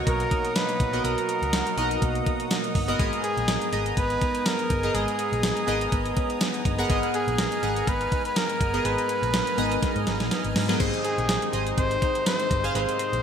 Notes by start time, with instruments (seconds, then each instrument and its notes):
Already playing: synth keys B2 B3 F#4 A#4 C#5 D#5, clean electric guitar F#3 D#4 F#4, accordion D#5 F#5 A#5 D#6
0.07 picked electric bass B1, clean electric guitar A#3, flugelhorn A#4, kick, closed hi-hat
0.20 closed hi-hat
0.31 clean electric guitar D#4, kick, closed hi-hat
0.45 closed hi-hat
0.55 clean electric guitar A#3, flugelhorn B4, snare, closed hi-hat, tambourine
0.69 closed hi-hat
0.80 picked electric bass A#1, synth keys B2, clean electric guitar D#4, kick, closed hi-hat
0.93 synth keys B3 F#4 A#4 D#5, closed hi-hat
1.04 picked electric bass B1, clean electric guitar F#3, synth keys B3 F#4 A#4 D#5, flugelhorn A#4, closed hi-hat
1.18 closed hi-hat
1.29 clean electric guitar A#3, closed hi-hat
1.42 picked electric bass C#2, closed hi-hat
1.53 clean electric guitar F#4, snare, closed hi-hat, tambourine
1.67 closed hi-hat
1.77 picked electric bass B1, synth keys B2 F#4 A#4 D#5, analog polysynth D#4 F#4 A#4, clean electric guitar D#4, closed hi-hat
1.91 closed hi-hat
2.02 picked electric bass B1, clean electric guitar A#3, kick, closed hi-hat
2.15 closed hi-hat
2.26 clean electric guitar D#4, kick, closed hi-hat
2.40 closed hi-hat
2.51 clean electric guitar A#3, snare, closed hi-hat, tambourine
2.64 closed hi-hat
2.75 picked electric bass G1, clean electric guitar D#4, kick, open hi-hat
2.88 synth keys B3 F#4 A#4 D#5, closed hi-hat
2.99 picked electric bass G#1, synth keys G#2 B3 G#4 A#4 D#5, clean electric guitar G#3, accordion B3 G#5, kick, closed hi-hat
3.13 closed hi-hat
3.24 clean electric guitar B3, flugelhorn G#4, closed hi-hat
3.37 picked electric bass A#1, closed hi-hat
3.48 clean electric guitar A#4, snare, closed hi-hat, tambourine
3.62 closed hi-hat
3.72 picked electric bass G#1, synth keys B3 G#4 D#5 A#5, clean electric guitar D#4, closed hi-hat
3.86 closed hi-hat
3.97 picked electric bass G#1, clean electric guitar B3, flugelhorn B4, kick, closed hi-hat
4.10 closed hi-hat
4.21 clean electric guitar D#4, kick, closed hi-hat
4.35 closed hi-hat
4.46 clean electric guitar B3, flugelhorn A#4, snare, closed hi-hat, tambourine
4.59 closed hi-hat
4.70 picked electric bass G1, clean electric guitar D#4, kick, closed hi-hat
4.83 synth keys B3 G#4 A#4 D#5, closed hi-hat
4.94 picked electric bass G#1, synth keys G#2 B3 G#4 A#4 D#5, clean electric guitar G#3, flugelhorn G#4, closed hi-hat
5.08 closed hi-hat
5.19 clean electric guitar B3, closed hi-hat
5.32 picked electric bass A#1, closed hi-hat
5.43 clean electric guitar A#4, snare, closed hi-hat, tambourine
5.57 closed hi-hat
5.67 picked electric bass G#1, synth keys B3 G#4 A#4 D#5, clean electric guitar D#4, closed hi-hat
5.81 closed hi-hat
5.92 picked electric bass G#1, clean electric guitar B3, kick, closed hi-hat
6.06 closed hi-hat
6.17 clean electric guitar C#4, kick, closed hi-hat
6.30 clean electric guitar D#4, closed hi-hat
6.41 clean electric guitar B3, snare, closed hi-hat, tambourine
6.54 closed hi-hat
6.65 picked electric bass G1, clean electric guitar D#4, kick, closed hi-hat
6.78 synth keys B3 G#4 A#4 F#5, closed hi-hat
6.89 picked electric bass G#1, synth keys G#2 B3 G#4 A#4 D#5, clean electric guitar G#3, accordion F6, kick, closed hi-hat
7.03 closed hi-hat
7.14 clean electric guitar B3, flugelhorn G#4, closed hi-hat
7.28 picked electric bass A#1, closed hi-hat
7.38 clean electric guitar A#4, snare, closed hi-hat, tambourine
7.52 closed hi-hat
7.62 picked electric bass G#1, synth keys B3 G#4 F#5 A#5, clean electric guitar D#4, closed hi-hat
7.76 closed hi-hat
7.87 picked electric bass G#1, clean electric guitar B3, flugelhorn B4, kick, closed hi-hat
8.01 closed hi-hat
8.12 clean electric guitar D#4, kick, closed hi-hat
8.25 flugelhorn B4, closed hi-hat
8.36 clean electric guitar B3, flugelhorn A#4, snare, closed hi-hat, tambourine
8.49 closed hi-hat
8.60 picked electric bass G1, clean electric guitar D#4, kick, closed hi-hat
8.73 synth keys B3 G#4 A#4 D#5, closed hi-hat
8.84 picked electric bass G#1, synth keys G#2 B3 G#4 D#5 A#5, clean electric guitar G#3, flugelhorn B4, closed hi-hat
8.98 closed hi-hat
9.09 clean electric guitar B3, closed hi-hat
9.22 picked electric bass A#1, closed hi-hat
9.34 clean electric guitar A#4, snare, closed hi-hat, tambourine
9.47 closed hi-hat
9.57 picked electric bass G#1, synth keys B3 G#4 D#5 A#5, analog polysynth D#4 G#4 B4, clean electric guitar D#4, closed hi-hat
9.72 closed hi-hat
9.82 clean electric guitar B3, kick, snare, closed hi-hat
9.96 picked electric bass G#2, closed hi-hat
10.07 picked electric bass G#1, clean electric guitar D#4, snare, closed hi-hat
10.20 picked electric bass A#1, snare, closed hi-hat
10.31 clean electric guitar B3, snare, closed hi-hat
10.44 picked electric bass G#1, closed hi-hat
10.56 picked electric bass G#2, clean electric guitar D#4, snare, open hi-hat
10.68 synth keys B3 G#4 A#4 D#5, snare, closed hi-hat
10.80 picked electric bass G#1, synth keys G#2 G#4 C5 D#5, accordion C3 D#3 G#3 D#4, clean electric guitar C4, kick, closed hi-hat, crash
10.94 closed hi-hat
11.04 clean electric guitar C4, flugelhorn G#4, closed hi-hat
11.18 picked electric bass A#1, closed hi-hat
11.29 clean electric guitar G#4, snare, closed hi-hat, tambourine
11.42 closed hi-hat
11.53 picked electric bass G#1, clean electric guitar D#4, synth keys G#4 C5 D#5, closed hi-hat
11.67 closed hi-hat
11.77 picked electric bass G#1, clean electric guitar C4, flugelhorn C5, kick, closed hi-hat
11.91 closed hi-hat
12.02 clean electric guitar D#4, kick, closed hi-hat
12.15 closed hi-hat
12.26 clean electric guitar C4, flugelhorn C5, snare, closed hi-hat, tambourine
12.40 closed hi-hat
12.50 picked electric bass G1, clean electric guitar D#4, kick, closed hi-hat
12.64 synth keys G#4 C5 F5, closed hi-hat
12.75 picked electric bass G#1, synth keys G#2 G#4 C5 D#5, accordion G#3, clean electric guitar C4, flugelhorn C5, closed hi-hat
12.89 closed hi-hat
12.99 clean electric guitar C4, closed hi-hat
13.13 picked electric bass A#1, closed hi-hat